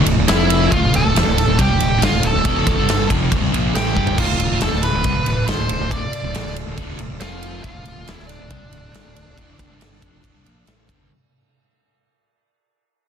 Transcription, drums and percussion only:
0.06 ride medium
0.28 snare loud
0.28 ride loud
0.50 ride medium
0.72 kick loud
0.72 ride loud
0.94 ride medium
1.16 snare loud
1.16 ride loud
1.38 snare soft
1.38 ride medium
1.59 kick loud
1.59 ride loud
1.80 ride medium
2.02 snare loud
2.02 ride loud
2.23 ride medium
2.45 kick loud
2.45 ride loud
2.67 kick loud
2.67 ride medium
2.89 snare loud
2.89 ride loud
3.10 kick loud
3.10 ride medium
3.32 kick loud
3.32 ride loud
3.54 ride medium
3.75 snare loud
3.75 ride loud
3.97 kick medium
4.07 floor tom loud
4.18 kick loud
4.18 crash loud
4.40 ride medium
4.61 snare loud
4.61 ride loud
4.73 snare soft
4.83 snare soft
4.83 ride medium
5.04 kick loud
5.04 ride loud
5.26 ride medium
5.48 snare loud
5.48 ride loud
5.69 ride medium
5.91 kick loud
5.91 ride loud
6.13 ride medium
6.35 snare loud
6.35 ride loud
6.47 snare soft
6.56 ride medium
6.78 kick loud
6.78 ride loud
6.99 ride medium
7.20 snare loud
7.20 ride loud
7.43 ride medium
7.64 kick loud
7.64 ride loud
7.85 ride medium
8.07 snare loud
8.07 ride loud
8.19 snare soft
8.29 snare soft
8.29 ride medium
8.50 kick loud
8.50 ride loud
8.73 ride medium
8.94 snare loud
8.94 ride loud
9.16 ride medium
9.38 kick loud
9.38 ride loud
9.59 kick loud
9.59 ride medium
9.81 snare loud
9.81 ride loud
9.93 snare soft
10.02 kick loud
10.02 ride medium
10.24 kick loud
10.24 ride loud
10.46 ride medium
10.67 snare loud
10.67 ride loud
10.89 kick loud
10.89 ride medium

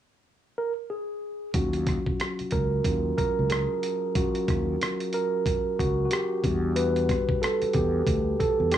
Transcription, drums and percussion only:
1.54 kick loud
1.54 closed hi-hat medium
1.73 closed hi-hat soft
1.87 kick medium
1.87 cross-stick soft
1.87 closed hi-hat medium
2.06 kick medium
2.20 cross-stick loud
2.20 closed hi-hat medium
2.39 closed hi-hat soft
2.51 kick medium
2.51 closed hi-hat medium
2.84 kick medium
2.84 closed hi-hat medium
3.18 kick medium
3.18 closed hi-hat soft
3.50 cross-stick loud
3.50 closed hi-hat medium
3.83 closed hi-hat medium
4.15 kick loud
4.15 closed hi-hat medium
4.35 closed hi-hat soft
4.48 kick medium
4.48 cross-stick soft
4.48 closed hi-hat medium
4.81 cross-stick loud
4.81 closed hi-hat medium
5.00 closed hi-hat soft
5.13 closed hi-hat medium
5.46 kick medium
5.46 closed hi-hat medium
5.79 kick medium
5.79 closed hi-hat soft
6.11 cross-stick loud
6.11 closed hi-hat medium
6.44 kick medium
6.44 closed hi-hat medium
6.76 closed hi-hat medium
6.96 closed hi-hat soft
7.09 kick medium
7.09 cross-stick soft
7.09 closed hi-hat medium
7.29 kick medium
7.43 cross-stick medium
7.43 closed hi-hat medium
7.62 closed hi-hat soft
7.73 kick medium
7.73 closed hi-hat medium
8.07 kick medium
8.07 closed hi-hat medium
8.40 kick medium
8.40 closed hi-hat soft
8.72 cross-stick loud
8.72 closed hi-hat medium

